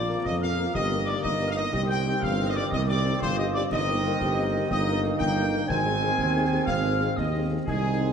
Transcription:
Already playing: tuba A#1, trombone section F3 A#3, euphonium F4, trumpet section D5, woodwind section D5
0.09 french horn section A#3 F4 A#4
0.24 tuba F2, woodwind section D#5, trumpet section D#5, piccolo D#6, concert bass drum, snare
0.41 french horn section A#3 F4 A#4, trumpet section F5, woodwind section F5, piccolo F6
0.58 french horn section A#3 F4 A#4
0.73 tuba G1, trombone section D#3, euphonium G4, trumpet section D#5, woodwind section D#5, piccolo D#6, concert bass drum, snare
0.91 french horn section A#3 D#4 A#4, snare
1.05 french horn section A#3 D#4 A#4, trumpet section D5, woodwind section D5, piccolo D6, snare
1.22 tuba G1, euphonium D#4, woodwind section D#5, trumpet section D#5, piccolo D#6, concert bass drum, snare
1.41 french horn section A#3 D#4 A#4
1.47 woodwind section F5, trumpet section F5, piccolo F6
1.54 french horn section A#3 D#4 A#4, trumpet section D#5, woodwind section D#5, piccolo D#6
1.73 tuba C2, trombone section D#3 C4, euphonium G4, woodwind section D#5, trumpet section D#5, piccolo D#6, concert bass drum, snare, crash
1.88 french horn section C4 D#4 G4, woodwind section G5, trumpet section G5, piccolo G6
2.08 french horn section C4 D#4 G4
2.21 tuba G1, woodwind section F5, trumpet section F5, piccolo F6, concert bass drum, snare
2.40 french horn section C4 D#4 G4
2.46 woodwind section D#5, trumpet section D#5, piccolo D#6
2.54 french horn section C4 D#4 G4, woodwind section D5, trumpet section D5, piccolo D6
2.70 tuba C2, woodwind section D#5, trumpet section D#5, piccolo D#6, concert bass drum, snare
2.86 french horn section C4 D#4 G4, woodwind section D5, trumpet section D5, piccolo D6
3.06 french horn section C4 D#4 G4
3.19 tuba G1, euphonium F4, woodwind section C5, trumpet section C5, piccolo C6, concert bass drum, snare
3.36 french horn section C4 D#4 G4, woodwind section D#5, trumpet section D#5, piccolo D#6
3.53 french horn section C4 D#4 G4, woodwind section D5, trumpet section D5, piccolo D6
3.71 tuba G1, trombone section D#3, euphonium D#4, trumpet section D#5, woodwind section D#5, piccolo D#6, concert bass drum, snare, crash
3.89 french horn section A#3 D#4 A#4
4.06 french horn section A#3 D#4 A#4
4.20 tuba G1, euphonium G4, concert bass drum, snare
4.39 french horn section A#3 D#4 A#4
4.54 french horn section A#3 D#4 A#4
4.69 tuba G1, trombone section A#3, euphonium D#4, woodwind section D#5, trumpet section D#5, piccolo D#6, concert bass drum, snare
4.86 french horn section A#3 D#4 A#4, snare
5.04 french horn section A#3 D#4 A#4, snare
5.18 tuba G1, trumpet section G5, woodwind section G5, piccolo G6, concert bass drum, snare
5.37 french horn section A#3 D#4 A#4
5.54 french horn section A#3 D#4 A#4
5.67 tuba G#1, trombone section D#3 C4, euphonium C4, woodwind section G#5, trumpet section G#5, piccolo G#6, concert bass drum, snare, crash
5.86 french horn section C4 D#4 G#4
6.03 french horn section C4 D#4 G#4
6.18 tuba D#2, concert bass drum, snare
6.36 french horn section C4 D#4 G#4
6.53 french horn section C4 D#4 G#4
6.65 tuba G#1, trumpet section F5, woodwind section F5, piccolo F6, concert bass drum, snare
6.84 french horn section C4 D#4 G#4, snare
7.00 french horn section C4 D#4 G#4, snare
7.16 tuba D#2, euphonium C4, woodwind section D#5, trumpet section D#5, piccolo D#6, concert bass drum, snare
7.33 french horn section C4 D#4 G#4
7.51 french horn section C4 D#4 G#4
7.66 tuba C2, trombone section D#3 G#3, french horn section C4 D#4 G#4, euphonium D#4, trumpet section G#4, woodwind section G#4, piccolo G#5, concert bass drum, snare, crash

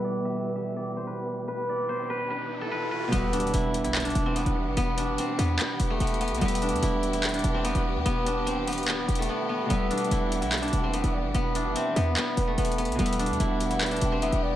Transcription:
Already playing: harp B2 G3 E4 B4, string section E3 B3 G4, guzheng A4 B4, riser
0.04 guzheng D5
0.25 guzheng E5
0.55 guzheng E5
0.76 guzheng D5
0.97 guzheng C5
1.07 guzheng B4
1.48 guzheng B4
1.69 guzheng D5
1.89 guzheng C5
2.10 guzheng B4
2.30 guzheng B4
2.61 guzheng A4
2.71 guzheng B4
2.91 guzheng B4
3.08 harp B2 G3
3.12 808-style bass E1, string section E3 B3 G4, guzheng B3, harp E4 B4, closed hi-hat, impact
3.33 guzheng D4, closed hi-hat
3.40 closed hi-hat
3.47 closed hi-hat
3.54 808-style bass E1, guzheng E4, closed hi-hat
3.74 closed hi-hat
3.84 808-style bass B1, guzheng E4, closed hi-hat
3.95 clap, closed hi-hat
4.00 closed hi-hat
4.04 guzheng D4, closed hi-hat
4.10 closed hi-hat
4.15 808-style bass E1, closed hi-hat
4.26 guzheng C4
4.36 guzheng B3, closed hi-hat
4.46 808-style bass E1, closed hi-hat
4.67 808-style bass G1
4.77 808-style bass E1, guzheng B3, closed hi-hat
4.98 guzheng D4, closed hi-hat
5.08 808-style bass F#1
5.18 guzheng C4, closed hi-hat
5.39 808-style bass E2, guzheng B3, closed hi-hat
5.59 guzheng B3, clap, closed hi-hat
5.80 808-style bass E1, closed hi-hat
5.90 guzheng A3
6.00 808-style bass E1, guzheng B3, closed hi-hat
6.07 closed hi-hat
6.14 closed hi-hat
6.21 guzheng B3, closed hi-hat
6.28 808-style bass B1, closed hi-hat
6.35 harp B2, closed hi-hat
6.40 808-style bass E1, string section E3 B3, harp G3 E4, guzheng B3, closed hi-hat
6.45 harp B4, closed hi-hat
6.55 closed hi-hat
6.62 guzheng D4, closed hi-hat
6.69 808-style bass E2, closed hi-hat
6.76 closed hi-hat
6.83 808-style bass E1, guzheng E4, closed hi-hat
7.03 closed hi-hat
7.13 guzheng E4, closed hi-hat
7.24 clap, closed hi-hat
7.29 closed hi-hat
7.34 guzheng D4, closed hi-hat
7.39 closed hi-hat
7.44 808-style bass E1, closed hi-hat
7.54 guzheng C4
7.64 guzheng B3, closed hi-hat
7.75 808-style bass E1, closed hi-hat
7.96 808-style bass E2
8.06 808-style bass E1, guzheng B3, closed hi-hat
8.26 guzheng D4, closed hi-hat
8.46 guzheng C4, closed hi-hat
8.67 guzheng B3, closed hi-hat, open hi-hat
8.73 closed hi-hat
8.78 closed hi-hat
8.83 closed hi-hat
8.88 808-style bass D1, guzheng B3, clap, closed hi-hat
8.98 808-style bass E1
9.09 808-style bass E1, closed hi-hat
9.15 guzheng A3, closed hi-hat
9.22 closed hi-hat
9.29 guzheng B3
9.49 guzheng B3
9.65 harp B2 G3
9.70 808-style bass E1, guzheng B3, string section B3, harp E4 B4, closed hi-hat
9.90 guzheng D4, soft synth lead F#5, closed hi-hat
9.98 closed hi-hat
10.04 closed hi-hat
10.11 808-style bass E1, guzheng E4, closed hi-hat
10.32 closed hi-hat
10.42 808-style bass B1, guzheng E4, closed hi-hat
10.52 clap, closed hi-hat
10.58 closed hi-hat
10.62 guzheng D4, closed hi-hat
10.68 closed hi-hat
10.73 808-style bass E1, closed hi-hat
10.84 guzheng C4
10.93 guzheng B3, soft synth lead E5, closed hi-hat
11.04 808-style bass E1, closed hi-hat
11.14 soft synth lead D5
11.24 808-style bass G1
11.35 808-style bass E1, guzheng B3, closed hi-hat
11.55 guzheng D4, soft synth lead E5, closed hi-hat
11.65 808-style bass F#1
11.76 guzheng C4, closed hi-hat
11.96 808-style bass E2, guzheng B3, closed hi-hat
12.16 guzheng B3, clap, closed hi-hat
12.37 808-style bass E1, soft synth lead B4, closed hi-hat
12.47 guzheng A3
12.58 808-style bass E1, guzheng B3, closed hi-hat
12.65 closed hi-hat
12.72 closed hi-hat
12.78 guzheng B3, closed hi-hat
12.85 808-style bass B1, closed hi-hat
12.92 harp B2, closed hi-hat
12.98 808-style bass E1, harp G3 E4, guzheng B3, string section G4, closed hi-hat
13.03 harp B4, closed hi-hat
13.13 closed hi-hat
13.19 guzheng D4, soft synth lead F#5, closed hi-hat
13.26 808-style bass E2, closed hi-hat
13.33 closed hi-hat
13.40 808-style bass E1, guzheng E4, closed hi-hat
13.60 closed hi-hat
13.71 guzheng E4, closed hi-hat
13.81 clap, closed hi-hat
13.86 closed hi-hat
13.91 guzheng D4, closed hi-hat
13.96 closed hi-hat
14.01 808-style bass E1, closed hi-hat
14.12 guzheng C4
14.22 guzheng B3, soft synth lead E5, closed hi-hat
14.32 808-style bass E1, closed hi-hat
14.43 soft synth lead D5

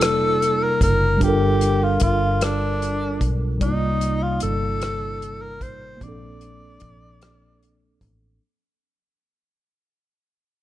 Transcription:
Already playing: fingered electric bass F1, tine electric piano C3 G3 A#3 D#4 F4 D5, tenor saxophone A4
0.01 cross-stick, closed hi-hat
0.42 closed hi-hat
0.64 tenor saxophone A#4
0.81 fingered electric bass F#1, tenor saxophone A#4, kick, closed hi-hat
1.17 tine electric piano G3 D4, kick, closed hi-hat
1.22 fingered electric bass G1, tine electric piano F4 A4, tenor saxophone G4
1.28 tine electric piano A#4
1.61 closed hi-hat
1.84 tenor saxophone F4
2.00 fingered electric bass G1, tenor saxophone F4, kick, closed hi-hat
2.41 tenor saxophone D4, cross-stick, closed hi-hat
2.82 closed hi-hat
3.21 fingered electric bass B1, kick, closed hi-hat
3.57 tine electric piano C3 G3
3.61 fingered electric bass C2, tenor saxophone D#4, tine electric piano D#4 D5, kick, closed hi-hat
3.66 tine electric piano A#3 F4
4.01 closed hi-hat
4.23 tenor saxophone F4
4.40 fingered electric bass G1, tenor saxophone A4, closed hi-hat
4.82 cross-stick, closed hi-hat
5.22 closed hi-hat
5.42 tenor saxophone A#4
5.61 fingered electric bass A1, tenor saxophone C5, kick, closed hi-hat
5.97 tine electric piano F3 A#3
6.01 fingered electric bass A#1, tine electric piano C4, tenor saxophone D5, kick, closed hi-hat
6.05 tine electric piano D4 A4
6.41 closed hi-hat
6.80 fingered electric bass A#1, kick, closed hi-hat
7.22 cross-stick, closed hi-hat
7.63 closed hi-hat
8.01 fingered electric bass A1, kick, closed hi-hat

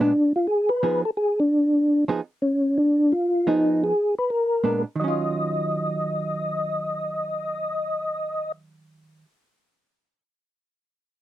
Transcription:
0.00 hollow-body jazz guitar A#2 G#3 B3 D4, tonewheel organ D4
0.36 tonewheel organ F4
0.47 tonewheel organ G#4
0.69 tonewheel organ B4
0.83 hollow-body jazz guitar F3 B3 D#4 G#4
1.05 tonewheel organ A4
1.17 tonewheel organ G#4
1.40 tonewheel organ D4
2.08 hollow-body jazz guitar F3 B3 D#4 G#4
2.42 tonewheel organ C#4
2.78 tonewheel organ D4
3.12 tonewheel organ F4
3.47 hollow-body jazz guitar F3 B3 D#4 G#4, tonewheel organ D#4
3.84 tonewheel organ G#4
4.19 tonewheel organ B4
4.30 tonewheel organ A#4
4.64 hollow-body jazz guitar A#2 G#3 B3 D4
4.96 hollow-body jazz guitar D#3, tonewheel organ D#5
5.01 hollow-body jazz guitar F#3 C#4
5.08 hollow-body jazz guitar F4

